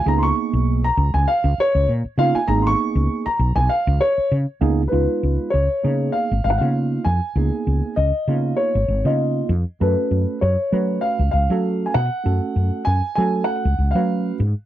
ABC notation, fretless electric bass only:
X:1
M:4/4
L:1/16
Q:"Swing 16ths" 1/4=98
K:Dbmix
V:1 name="Fretless electric bass" clef=bass
D,,2 z C,,3 D,, D,, z D,, z D,, B,, z D, z | A,,,2 z D,, z2 C,, C,, z D,, z2 D, z D,,2 | D,, z D,, z D,, z D,2 z A,,, A,,, D,3 F,, z | D,, z D,, z D,, z D,2 z A,,, A,,, D,3 F,, z |
G,, z G,, z G,, z G,2 z D,, D,, G,3 C, z | G,, z G,, z G,, z G,2 z D,, D,, G,3 A,, z |]